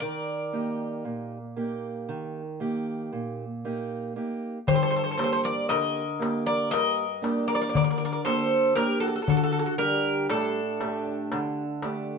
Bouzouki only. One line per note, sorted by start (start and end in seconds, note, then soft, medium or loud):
0.00 3.60 D5 medium
4.68 4.74 C5 medium
4.76 4.82 C5 medium
4.83 4.89 C5 medium
4.90 4.95 C5 medium
4.96 5.03 C5 medium
5.04 5.10 C5 medium
5.11 5.16 C5 medium
5.17 5.22 C5 medium
5.24 5.31 C5 medium
5.33 5.39 C5 medium
5.45 5.68 D5 medium
5.69 6.43 D#5 loud
6.46 6.71 D5 loud
6.71 7.47 D#5 loud
7.48 7.54 D5 medium
7.55 7.60 D5 medium
7.62 7.68 D5 medium
7.69 7.75 D5 medium
7.77 7.83 D5 medium
7.84 7.89 D5 medium
7.90 7.97 D5 medium
7.98 8.04 D5 medium
8.05 8.11 D5 medium
8.13 8.21 D5 medium
8.25 8.73 C5 medium
8.75 9.00 A#4 medium
9.00 9.06 A4 medium
9.08 9.14 A4 medium
9.16 9.21 A4 medium
9.22 9.28 A4 soft
9.29 9.36 A4 medium
9.37 9.42 A4 medium
9.44 9.51 A4 medium
9.52 9.58 A4 medium
9.59 9.65 A4 medium
9.66 9.74 A4 medium
9.78 10.26 A#4 medium
10.30 12.18 A4 medium